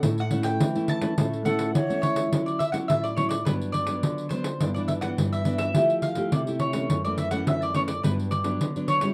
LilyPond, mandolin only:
\new Staff \with { instrumentName = "Mandolin" } { \time 4/4 \key d \major \tempo 4 = 105 r16 fis''8 g''8. a''4 fis''4 cis''8~ | cis''16 d''16 e''16 fis''16 e''16 d''16 cis''16 d''16 b'8 d''4 c''8~ | c''16 d''16 e''16 fis''8 e''8 e''8. f''8 d''8 cis''8~ | cis''16 d''16 e''16 fis''16 e''16 d''16 cis''16 d''16 b'8 d''4 cis''8 | }